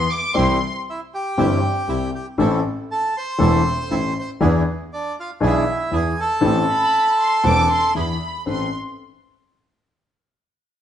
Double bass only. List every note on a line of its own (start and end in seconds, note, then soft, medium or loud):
0.35 0.57 C2 medium
1.38 1.59 G1 medium
1.88 2.09 C2 medium
2.38 2.60 A1 medium
3.41 3.62 E1 medium
3.91 4.12 A1 medium
4.41 4.62 E2 loud
5.42 5.63 B1 medium
5.92 6.13 E2 medium
6.43 6.64 A1 medium
7.45 7.66 E1 medium
7.96 8.17 E2 medium
8.46 8.67 A1 medium